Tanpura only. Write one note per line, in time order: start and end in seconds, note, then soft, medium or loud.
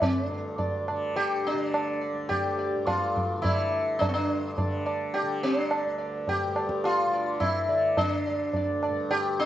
0.00 2.12 D2 medium
0.00 0.29 G2 medium
0.00 0.90 D3 medium
0.30 2.75 G2 medium
0.90 1.54 D3 medium
1.54 3.37 D3 medium
2.13 5.85 D2 medium
2.75 4.01 G2 medium
3.37 4.62 D3 medium
4.01 6.46 G2 medium
4.62 5.22 D3 medium
5.22 7.05 D3 medium
5.86 8.29 D2 medium
6.46 8.88 G2 medium
7.06 7.68 D3 soft
7.68 9.46 D3 medium
8.29 9.46 D2 medium
8.89 9.46 G2 medium